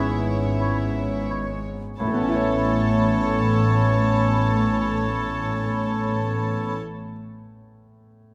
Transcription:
0.00 1.68 G#1 medium
0.00 1.68 G#2 soft
0.00 1.99 G#2 soft
0.00 2.04 G#2 soft
0.00 1.30 G#3 soft
0.00 1.51 B3 soft
0.00 1.96 B3 soft
0.00 0.61 C#4 soft
0.00 1.50 C#4 soft
0.00 1.96 C#4 soft
0.00 1.26 E4 medium
0.00 1.96 G#4 soft
0.00 3.87 B4 soft
0.00 0.11 C#5 soft
0.00 1.67 C#5 soft
0.00 1.27 E5 soft
0.00 0.11 B5 soft
0.59 2.20 C#4 soft
0.59 0.77 C#5 soft
0.59 0.75 B5 soft
1.30 2.06 G#3 soft
1.30 1.46 C#5 soft
1.30 1.45 B5 soft
1.98 6.75 A1 medium
1.98 6.82 A2 soft
1.98 6.83 A2 soft
1.98 6.76 A2 medium
1.98 6.75 B3 medium
1.98 6.76 C#4 soft
1.98 6.76 A4 medium
1.98 6.75 C#5 medium
1.98 6.76 C#5 medium
1.98 6.75 A5 soft
1.98 6.74 B5 soft
2.07 6.89 A3 soft
2.07 6.90 A3 soft
2.14 6.97 B3 soft
2.21 7.04 C#4 soft
2.28 7.10 E4 soft
2.28 7.11 E4 soft
2.35 7.18 C#5 soft

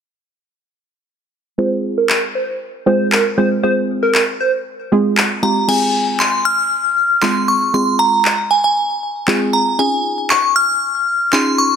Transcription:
1.58 2.16 G#3 medium
1.58 2.16 C4 medium
1.58 2.16 F4 medium
1.58 2.16 G#4 medium
1.58 1.69 C5 loud
1.98 2.18 A#4 medium
2.10 clap loud
2.35 2.46 C5 medium
2.86 3.15 G#3 medium
2.86 3.15 C4 medium
2.86 3.15 F4 medium
2.86 3.16 G#4 medium
2.86 3.07 C5 medium
3.12 3.23 A#4 medium
3.12 clap loud
3.37 3.53 G#3 medium
3.37 3.53 C4 medium
3.37 3.53 F4 medium
3.37 3.53 G#4 medium
3.37 3.49 C5 medium
3.63 4.21 G#3 medium
3.63 4.21 C4 medium
3.63 4.21 F4 medium
3.63 4.21 G#4 medium
3.63 3.74 C5 loud
4.03 4.23 A#4 medium
4.15 clap loud
4.40 4.51 C5 medium
4.92 5.21 G#3 medium
4.92 5.21 C4 medium
4.92 5.21 F4 medium
4.92 5.21 G#4 medium
5.18 clap loud
5.43 5.58 G#3 medium
5.43 5.58 C4 medium
5.43 5.58 F4 medium
5.43 5.58 G4 loud
5.43 5.69 A#5 medium
5.68 6.26 G#3 medium
5.68 6.26 C4 medium
5.68 6.26 F4 medium
5.68 6.27 G#4 medium
5.68 6.21 G#5 medium
5.68 crash medium
6.20 6.46 C6 medium
6.20 clap loud
6.45 7.18 F6 loud
7.22 7.51 G#3 medium
7.22 7.51 C4 medium
7.22 7.51 F4 medium
7.22 7.52 G#4 medium
7.22 7.49 C6 medium
7.22 clap loud
7.48 7.72 C#6 medium
7.74 8.32 G#3 medium
7.74 8.32 C4 medium
7.74 8.32 F4 medium
7.74 8.32 G#4 medium
7.74 8.00 C6 loud
7.99 8.47 A#5 medium
8.25 clap loud
8.51 8.57 G#5 medium
8.64 9.56 G#5 medium
9.28 9.57 G#3 medium
9.28 9.57 C4 medium
9.28 9.57 F4 medium
9.28 9.57 G#4 loud
9.28 clap loud
9.53 9.65 A#5 medium
9.79 10.37 C#4 medium
9.79 10.37 D#4 medium
9.79 10.37 F4 medium
9.79 10.37 G#4 medium
9.79 10.27 G#5 medium
10.30 10.57 C#6 medium
10.30 clap loud
10.56 11.29 F6 loud
11.33 11.62 C#4 medium
11.33 11.62 D#4 medium
11.33 11.62 F4 medium
11.33 11.62 G#4 medium
11.33 11.59 C6 medium
11.33 clap loud
11.58 11.76 C#6 medium

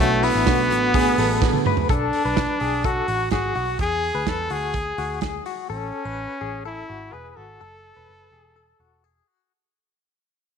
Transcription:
0.00 0.29 B1 loud
0.00 0.23 B2 medium
0.00 0.23 F#3 medium
0.00 0.22 A3 medium
0.00 0.25 A3 loud
0.00 0.41 B3 medium
0.00 0.41 D4 medium
0.00 0.21 D4 loud
0.00 0.23 F#4 loud
0.00 0.42 F#4 medium
0.00 0.41 A4 medium
0.00 1.87 B4 medium
0.00 1.87 F#5 medium
0.00 1.85 G#5 medium
0.00 1.87 D6 medium
0.22 0.46 F#3 medium
0.22 0.46 A3 medium
0.22 1.65 B3 loud
0.22 0.46 D4 medium
0.22 0.47 E4 medium
0.22 hi-hat pedal medium
0.22 open hi-hat medium
0.35 0.45 A1 loud
0.46 0.71 B1 loud
0.46 0.70 B2 medium
0.46 0.70 F#3 medium
0.46 0.69 A3 medium
0.46 0.89 B3 medium
0.46 0.89 D4 medium
0.46 0.69 D4 medium
0.46 0.89 F#4 medium
0.46 0.92 F#4 medium
0.46 0.89 A4 medium
0.46 kick loud
0.46 snare loud
0.46 hi-hat pedal medium
0.46 open hi-hat medium
0.70 1.11 A1 loud
0.70 0.94 F#3 soft
0.70 0.94 D4 medium
0.70 hi-hat pedal medium
0.70 open hi-hat medium
0.94 1.18 B2 medium
0.94 1.18 F#3 medium
0.94 1.18 A3 medium
0.94 1.36 B3 medium
0.94 1.36 D4 medium
0.94 1.17 D4 medium
0.94 1.36 F#4 medium
0.94 1.37 G#4 loud
0.94 1.18 G#4 medium
0.94 kick loud
0.94 hi-hat pedal medium
0.94 open hi-hat medium
1.18 1.58 A1 medium
1.18 1.40 F#3 soft
1.18 1.41 A3 medium
1.18 1.42 D4 medium
1.18 1.63 A4 medium
1.18 hi-hat pedal medium
1.18 open hi-hat medium
1.41 1.65 B2 medium
1.41 1.65 F#3 medium
1.41 1.65 A3 loud
1.41 1.84 B3 loud
1.41 1.84 D4 medium
1.41 1.64 D4 loud
1.41 1.84 F#4 medium
1.41 1.84 G#4 loud
1.41 kick loud
1.41 snare medium
1.53 high tom medium
1.65 1.90 F#3 medium
1.65 1.89 A3 medium
1.65 1.89 D4 medium
1.65 1.90 B4 medium
1.65 mid tom medium
1.77 floor tom medium
1.89 2.09 B1 medium
1.89 2.87 D4 medium
1.89 2.23 A4 loud
1.89 kick loud
1.89 closed hi-hat medium
2.13 open hi-hat medium
2.25 2.45 B1 medium
2.25 2.59 B4 medium
2.37 kick loud
2.37 snare loud
2.37 closed hi-hat medium
2.60 3.01 B1 medium
2.60 2.84 G#4 medium
2.60 open hi-hat medium
2.84 3.31 F#4 medium
2.84 3.08 A4 medium
2.84 kick loud
2.84 closed hi-hat medium
3.08 3.28 A1 medium
3.08 3.32 F#4 medium
3.08 open hi-hat medium
3.31 3.52 G#1 medium
3.31 3.76 F#4 medium
3.31 3.55 G#4 medium
3.31 kick loud
3.31 snare loud
3.31 closed hi-hat medium
3.55 3.76 B1 medium
3.55 3.79 F#4 medium
3.55 open hi-hat medium
3.79 4.10 E2 medium
3.79 4.13 G#4 medium
3.79 4.30 G#4 loud
3.79 kick loud
3.79 closed hi-hat medium
4.03 open hi-hat medium
4.15 4.25 D2 medium
4.15 4.48 B4 medium
4.27 4.47 E2 medium
4.27 4.54 A4 medium
4.27 kick medium
4.27 snare loud
4.27 closed hi-hat medium
4.50 4.91 D2 medium
4.50 4.74 F#4 medium
4.50 5.23 G#4 medium
4.50 open hi-hat medium
4.74 4.98 G#4 medium
4.74 kick loud
4.74 closed hi-hat medium
4.98 5.39 D2 medium
4.98 5.22 F#4 medium
4.98 open hi-hat medium
5.21 5.46 G#4 medium
5.21 kick medium
5.21 snare loud
5.21 closed hi-hat medium
5.46 5.69 F#4 medium
5.46 open hi-hat medium
5.70 5.90 A1 medium
5.70 6.61 C#4 medium
5.70 6.05 A4 medium
6.05 6.26 A1 medium
6.05 6.39 B4 medium
6.41 6.82 A1 medium
6.41 6.65 G#4 medium
6.65 7.14 E4 medium
6.65 6.89 A4 medium
6.89 7.10 G#1 medium
6.89 7.13 F#4 medium
7.13 7.33 E1 medium
7.13 7.37 G#4 medium
7.13 7.30 B4 medium
7.30 7.38 B4 medium
7.36 7.57 G#1 medium
7.36 7.60 F#4 medium
7.36 9.03 A4 medium
7.61 7.91 F#1 medium
7.61 7.94 A4 medium
7.97 8.07 E1 medium
7.97 8.30 B4 medium
8.09 8.29 F#1 medium
8.32 8.72 E1 medium
8.32 8.56 G#4 medium
8.56 8.80 A4 medium
8.79 9.20 E1 medium
8.79 9.04 F#4 medium
9.04 9.28 G#4 medium
9.28 9.51 F#4 medium

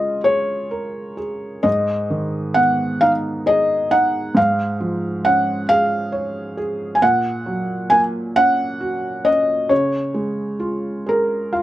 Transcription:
0.00 1.59 C#3 medium
0.00 1.13 G#3 soft
0.00 1.60 F4 soft
0.00 0.21 D#5 medium
0.24 1.16 G#4 medium
0.24 1.68 C#5 medium
0.71 1.61 A#4 soft
1.17 1.62 G#4 soft
1.63 4.33 G#2 medium
1.63 2.58 D#5 medium
2.10 3.88 D#3 soft
2.54 4.33 B3 soft
2.54 3.02 F#5 medium
3.01 3.90 D#4 medium
3.01 3.11 F5 medium
3.46 4.34 G#4 medium
3.46 3.93 D#5 medium
3.91 4.35 D#4 soft
3.91 4.38 F#5 medium
4.35 6.97 G#2 medium
4.35 5.28 F5 medium
4.80 6.53 F3 soft
5.25 6.98 C#4 soft
5.25 5.66 F#5 medium
5.69 6.56 G#4 medium
5.69 6.99 F5 medium
6.12 6.99 C#5 medium
6.57 7.01 G#4 medium
6.95 7.02 G#5 medium
7.02 9.66 A#2 medium
7.02 7.94 F#5 medium
7.46 9.21 F#3 soft
7.90 9.66 A#3 medium
7.90 8.00 G#5 medium
8.36 9.23 C#4 medium
8.36 9.28 F#5 loud
8.80 9.67 F#4 medium
9.25 9.69 C#4 medium
9.25 9.71 D#5 medium
9.69 11.63 C#3 medium
9.69 11.63 C#5 medium
10.14 11.63 G#3 medium
10.60 11.51 F4 soft
11.06 11.63 G#4 medium
11.06 11.63 A#4 medium
11.53 11.63 F4 soft
11.53 11.63 F5 medium

